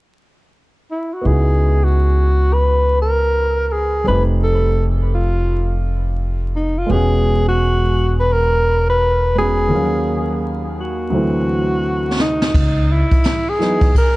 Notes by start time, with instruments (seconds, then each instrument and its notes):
0.91 alto saxophone E4
1.14 alto saxophone F#4
1.21 upright bass C#2, grand piano B3 D#4
1.26 grand piano E4 F#4, alto saxophone G#4
1.84 alto saxophone F#4
2.53 alto saxophone B4
3.02 alto saxophone A#4
3.68 alto saxophone A#4
3.72 alto saxophone G#4
4.04 upright bass F1, grand piano G3 C4
4.08 grand piano A3 D#4 G4, alto saxophone B4
4.43 alto saxophone A4
5.14 alto saxophone F4
6.56 alto saxophone D#4
6.78 alto saxophone F4
6.86 upright bass E1, grand piano G#3 B3
6.91 grand piano C#4 F#4, alto saxophone G#4
7.49 alto saxophone F#4
8.20 alto saxophone B4
8.33 alto saxophone A#4
8.90 alto saxophone B4
9.35 grand piano G#3 B3 C#4 F#4, alto saxophone G#4
9.68 grand piano D#2 F3 A#3
9.73 grand piano F#3 C#4 F5
10.80 alto saxophone F#4
11.10 grand piano D2 F#3 A3
11.14 grand piano E3 C4
12.20 alto saxophone D#4, snare
12.42 snare
12.54 upright bass C#2, kick, crash
12.92 alto saxophone E4
13.11 kick, ride
13.24 snare, hi-hat pedal, ride
13.49 alto saxophone G#4
13.59 grand piano E3 F#3 B3 D#4, snare
13.81 kick, ride
13.95 alto saxophone A#4, kick, ride